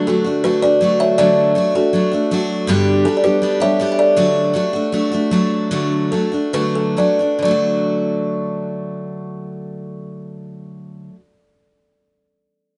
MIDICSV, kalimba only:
0, 0, Header, 1, 2, 480
1, 0, Start_track
1, 0, Key_signature, 2, "major"
1, 0, Tempo, 373134
1, 1532, Time_signature, 4, 2, 24, 8
1, 5852, Tempo, 390625
1, 7772, Tempo, 436999
1, 9212, Tempo, 466200
1, 14721, End_track
2, 0, Start_track
2, 0, Title_t, "Kalimba"
2, 0, Program_c, 0, 108
2, 94, Note_on_c, 0, 69, 76
2, 101, Note_on_c, 0, 66, 61
2, 543, Note_off_c, 0, 66, 0
2, 566, Note_on_c, 0, 71, 87
2, 577, Note_on_c, 0, 66, 71
2, 587, Note_off_c, 0, 69, 0
2, 798, Note_off_c, 0, 66, 0
2, 803, Note_off_c, 0, 71, 0
2, 804, Note_on_c, 0, 74, 93
2, 818, Note_on_c, 0, 71, 75
2, 1262, Note_off_c, 0, 71, 0
2, 1287, Note_on_c, 0, 76, 101
2, 1296, Note_on_c, 0, 73, 78
2, 1303, Note_off_c, 0, 74, 0
2, 1517, Note_off_c, 0, 73, 0
2, 1521, Note_on_c, 0, 74, 105
2, 1529, Note_on_c, 0, 69, 78
2, 1537, Note_off_c, 0, 76, 0
2, 2200, Note_off_c, 0, 69, 0
2, 2259, Note_on_c, 0, 69, 78
2, 2262, Note_on_c, 0, 66, 60
2, 2268, Note_off_c, 0, 74, 0
2, 3164, Note_off_c, 0, 69, 0
2, 3165, Note_off_c, 0, 66, 0
2, 3927, Note_on_c, 0, 69, 87
2, 3933, Note_on_c, 0, 62, 63
2, 4072, Note_off_c, 0, 62, 0
2, 4078, Note_on_c, 0, 74, 68
2, 4083, Note_off_c, 0, 69, 0
2, 4166, Note_on_c, 0, 71, 86
2, 4170, Note_off_c, 0, 74, 0
2, 4176, Note_on_c, 0, 67, 73
2, 4620, Note_off_c, 0, 67, 0
2, 4652, Note_on_c, 0, 76, 98
2, 4658, Note_on_c, 0, 73, 78
2, 4663, Note_off_c, 0, 71, 0
2, 5017, Note_off_c, 0, 73, 0
2, 5026, Note_off_c, 0, 76, 0
2, 5042, Note_on_c, 0, 76, 63
2, 5131, Note_off_c, 0, 76, 0
2, 5132, Note_on_c, 0, 74, 86
2, 5140, Note_on_c, 0, 69, 71
2, 6742, Note_off_c, 0, 74, 0
2, 6745, Note_off_c, 0, 69, 0
2, 7781, Note_on_c, 0, 69, 71
2, 8242, Note_on_c, 0, 71, 92
2, 8251, Note_off_c, 0, 69, 0
2, 8478, Note_on_c, 0, 69, 78
2, 8481, Note_off_c, 0, 71, 0
2, 8585, Note_off_c, 0, 69, 0
2, 8728, Note_on_c, 0, 74, 80
2, 9067, Note_off_c, 0, 74, 0
2, 9215, Note_on_c, 0, 74, 73
2, 12983, Note_off_c, 0, 74, 0
2, 14721, End_track
0, 0, End_of_file